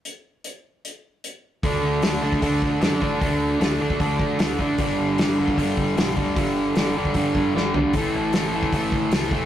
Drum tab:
HH |x---x---x---x---|o---o---o---o---|o---o---o---o---|o---o---o---o---|
SD |----------------|----o-------o---|----o-------o---|----o-------o---|
FT |----------------|----------------|----------------|----------------|
BD |----------------|o------oo-o---o-|o------oo-o---o-|o------oo-o---o-|

HH |o---o---o-------|o---o---o---o---|
SD |----o-------o---|----o-------o---|
FT |--------------o-|----------------|
BD |o------oo-o-----|o------oo-o---o-|